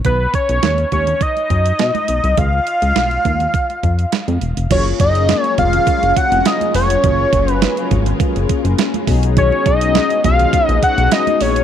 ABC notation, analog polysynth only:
X:1
M:4/4
L:1/8
Q:1/4=103
K:F#
V:1 name="Analog polysynth"
z8 | z8 | [A,CEFG]8- | [A,CEFG]6- [A,CEFG] [CDFG]- |
[CDFG]8 |]